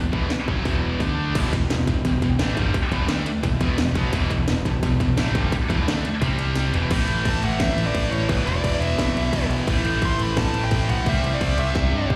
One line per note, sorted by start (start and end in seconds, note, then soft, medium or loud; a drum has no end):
0.00 0.12 E1 medium
0.00 0.11 E2 medium
0.00 0.10 B2 medium
0.12 0.29 E1 medium
0.12 0.30 E2 medium
0.12 0.30 B2 medium
0.12 0.30 E3 loud
0.12 kick medium
0.30 muted picked electric bass stroke soft
0.30 muted distorted electric guitar stroke medium
0.30 snare loud
0.30 open hi-hat medium
0.48 0.64 F#1 medium
0.48 0.65 F#2 medium
0.48 0.65 C#3 medium
0.48 0.65 F#3 loud
0.48 kick loud
0.65 0.98 E1 medium
0.65 1.00 E2 medium
0.65 1.00 B2 medium
0.65 1.01 E3 loud
0.65 kick loud
0.65 open hi-hat medium
1.00 1.33 D2 medium
1.00 1.35 D3 medium
1.00 1.35 A3 medium
1.00 1.36 D4 medium
1.00 kick loud
1.00 open hi-hat medium
1.34 1.52 E1 medium
1.34 1.52 E2 medium
1.34 1.52 B2 medium
1.34 1.53 E3 loud
1.34 6.86 G3 medium
1.34 6.17 E4 medium
1.34 6.17 B4 medium
1.34 4.10 G5 medium
1.34 kick loud
1.34 crash loud
1.34 ride loud
1.53 1.69 E1 medium
1.53 1.67 E2 medium
1.53 1.67 B2 medium
1.53 kick medium
1.53 ride medium
1.70 1.87 E1 medium
1.70 1.84 E2 medium
1.70 1.85 B2 medium
1.70 snare loud
1.70 ride loud
1.87 2.04 E1 medium
1.87 2.02 E2 medium
1.87 2.02 B2 medium
1.87 kick medium
1.87 ride medium
2.04 2.21 E1 medium
2.04 2.20 E2 medium
2.04 2.20 B2 medium
2.04 kick loud
2.04 ride loud
2.22 2.38 E1 medium
2.22 2.37 E2 medium
2.22 2.37 B2 medium
2.22 kick medium
2.22 ride medium
2.39 2.56 A1 medium
2.39 2.56 A2 loud
2.39 2.56 E3 loud
2.39 2.57 A3 loud
2.39 snare loud
2.39 ride medium
2.57 2.73 G1 loud
2.57 2.74 G2 medium
2.57 2.74 D3 medium
2.57 2.74 G3 medium
2.57 kick loud
2.57 ride medium
2.74 muted distorted electric guitar stroke medium
2.74 kick loud
2.74 ride medium
2.91 3.08 E1 medium
2.91 3.09 E2 medium
2.91 3.09 B2 medium
2.91 3.09 E3 loud
2.91 kick loud
2.91 ride medium
3.08 3.25 D2 medium
3.08 3.26 D3 medium
3.08 3.26 A3 medium
3.08 3.27 D4 loud
3.08 snare loud
3.08 ride loud
3.25 muted distorted electric guitar stroke medium
3.25 muted picked electric bass stroke soft
3.25 ride medium
3.43 3.60 E1 medium
3.43 3.57 E2 medium
3.43 3.58 B2 medium
3.43 kick loud
3.43 ride loud
3.61 3.77 E1 medium
3.61 3.78 E2 loud
3.61 3.78 B2 loud
3.61 3.78 E3 loud
3.61 kick loud
3.61 ride medium
3.78 3.95 E1 medium
3.78 3.93 E2 medium
3.78 3.93 B2 medium
3.78 snare loud
3.78 ride loud
3.95 4.12 B1 loud
3.95 4.13 B2 medium
3.95 4.13 F#3 medium
3.95 4.13 B3 loud
3.95 kick loud
3.95 ride medium
4.12 4.29 E1 loud
4.12 4.29 E2 loud
4.12 4.30 B2 loud
4.12 4.31 E3 loud
4.12 6.21 A5 medium
4.12 kick loud
4.12 ride loud
4.30 4.46 E1 medium
4.30 4.45 E2 medium
4.30 4.45 B2 medium
4.30 kick loud
4.30 ride medium
4.48 4.64 E1 medium
4.48 4.62 E2 medium
4.48 4.62 B2 medium
4.48 snare loud
4.48 ride loud
4.65 4.81 E1 medium
4.65 4.80 E2 medium
4.65 4.80 B2 medium
4.65 kick medium
4.65 ride medium
4.82 4.99 E1 medium
4.82 4.97 E2 medium
4.82 4.97 B2 medium
4.82 kick loud
4.82 ride loud
5.00 5.16 E1 medium
5.00 5.15 E2 medium
5.00 5.15 B2 medium
5.00 kick loud
5.00 ride medium
5.17 5.34 A1 medium
5.17 5.34 A2 loud
5.17 5.35 E3 loud
5.17 5.35 A3 loud
5.17 snare loud
5.17 ride loud
5.35 5.51 G1 loud
5.35 5.51 G2 medium
5.35 5.52 D3 loud
5.35 5.52 G3 loud
5.35 kick loud
5.35 ride medium
5.51 muted distorted electric guitar stroke medium
5.51 muted picked electric bass stroke soft
5.51 kick loud
5.51 ride loud
5.68 5.85 E1 medium
5.68 5.86 E2 medium
5.68 5.86 B2 medium
5.68 5.86 E3 medium
5.68 kick loud
5.68 ride medium
5.86 6.03 D2 loud
5.86 6.04 D3 medium
5.86 6.04 A3 loud
5.86 6.05 D4 loud
5.86 snare loud
5.86 ride loud
6.04 muted picked electric bass stroke soft
6.04 muted distorted electric guitar stroke medium
6.04 ride medium
6.21 6.70 C2 loud
6.21 6.73 C3 loud
6.21 6.74 G3 loud
6.21 6.73 C4 medium
6.21 6.74 C4 loud
6.21 6.73 C5 medium
6.21 6.73 G5 medium
6.21 kick loud
6.21 ride loud
6.39 ride medium
6.55 snare medium
6.55 ride loud
6.73 6.90 E1 loud
6.73 6.90 E2 medium
6.73 6.90 B2 loud
6.73 6.91 E3 medium
6.73 6.90 E4 medium
6.73 6.92 B4 medium
6.73 6.93 G5 medium
6.73 floor tom medium
6.73 ride medium
6.90 7.03 A1 loud
6.90 8.28 A2 medium
6.90 8.32 E3 medium
6.90 8.29 A3 medium
6.90 8.30 A3 loud
6.90 12.16 E4 medium
6.90 8.29 C#5 medium
6.90 8.28 E5 medium
6.90 kick loud
6.90 crash loud
6.90 crash medium
7.08 7.20 A1 loud
7.08 crash medium
7.25 7.37 A1 loud
7.25 7.45 A5 loud
7.25 kick medium
7.25 crash medium
7.43 7.55 A1 loud
7.43 7.63 F#5 loud
7.43 crash medium
7.60 7.72 A1 loud
7.60 7.88 E5 medium
7.60 kick loud
7.60 snare loud
7.60 crash medium
7.77 7.89 A1 medium
7.77 crash medium
7.86 8.11 D5 medium
7.94 8.06 A1 medium
7.94 kick medium
7.94 crash medium
8.11 8.24 A1 loud
8.11 8.28 C#5 medium
8.11 crash medium
8.28 8.41 E1 loud
8.28 9.67 E2 medium
8.28 9.66 B2 medium
8.28 9.68 E3 loud
8.28 9.67 G3 medium
8.28 9.66 B4 medium
8.28 8.46 B4 loud
8.28 12.16 E5 medium
8.28 kick loud
8.28 crash medium
8.46 8.58 E1 medium
8.46 8.82 D5 medium
8.46 crash medium
8.64 8.76 E1 loud
8.64 kick medium
8.64 crash medium
8.79 8.92 E1 loud
8.79 9.46 E5 loud
8.79 crash medium
8.98 9.10 E1 loud
8.98 kick loud
8.98 snare loud
8.98 crash medium
9.15 9.28 B1 loud
9.15 crash medium
9.33 9.45 E1 loud
9.33 kick loud
9.33 crash medium
9.49 9.62 B1 loud
9.49 crash medium
9.66 9.80 A1 loud
9.66 11.05 A2 medium
9.66 11.07 E3 loud
9.66 11.06 A3 medium
9.66 11.06 A3 loud
9.66 12.16 C5 medium
9.66 kick loud
9.66 crash medium
9.84 9.96 A1 medium
9.84 crash medium
10.02 10.14 A1 loud
10.02 10.22 C6 loud
10.02 kick medium
10.02 crash medium
10.18 10.31 A1 medium
10.18 crash medium
10.22 10.39 B5 loud
10.37 10.49 A1 loud
10.37 10.65 A5 loud
10.37 kick loud
10.37 snare loud
10.37 crash medium
10.53 10.66 A1 medium
10.53 crash medium
10.65 10.89 G5 loud
10.71 10.83 A1 medium
10.71 kick medium
10.71 crash medium
10.89 11.01 B1 loud
10.89 11.09 F#5 loud
10.89 crash medium
11.06 11.18 C2 loud
11.06 12.16 C3 medium
11.06 12.16 G3 loud
11.06 12.16 G3 medium
11.06 12.16 C4 loud
11.06 11.34 E5 medium
11.06 kick loud
11.06 crash medium
11.23 11.35 C2 medium
11.23 crash medium
11.34 11.58 D5 medium
11.41 11.53 C2 loud
11.41 kick medium
11.41 crash medium
11.57 11.70 C2 loud
11.57 12.07 E5 medium
11.57 crash medium
11.75 11.87 C2 medium
11.75 kick loud
11.75 snare medium
11.92 12.05 G2 medium
12.10 12.16 C2 medium
12.10 kick medium
12.10 mid tom medium